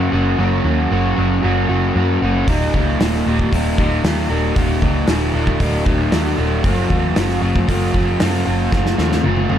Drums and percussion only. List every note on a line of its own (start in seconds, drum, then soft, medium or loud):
2.48 kick loud
2.48 open hi-hat medium
2.74 kick medium
3.01 snare loud
3.01 open hi-hat medium
3.14 snare soft
3.39 kick medium
3.53 kick loud
3.53 open hi-hat medium
3.78 kick medium
4.04 snare loud
4.04 open hi-hat medium
4.56 kick loud
4.56 open hi-hat medium
4.82 kick medium
5.08 snare loud
5.08 open hi-hat medium
5.47 kick medium
5.60 kick medium
5.60 open hi-hat medium
5.86 kick medium
6.12 snare loud
6.12 open hi-hat medium
6.64 kick loud
6.64 open hi-hat soft
6.90 kick medium
7.16 snare loud
7.16 open hi-hat medium
7.30 snare soft
7.56 kick medium
7.69 kick loud
7.69 open hi-hat medium
7.94 kick medium
8.20 snare loud
8.20 open hi-hat medium
8.72 kick loud
8.72 snare medium
8.86 snare medium
8.98 snare medium
9.12 snare medium
9.24 high tom medium
9.37 high tom medium
9.49 high tom medium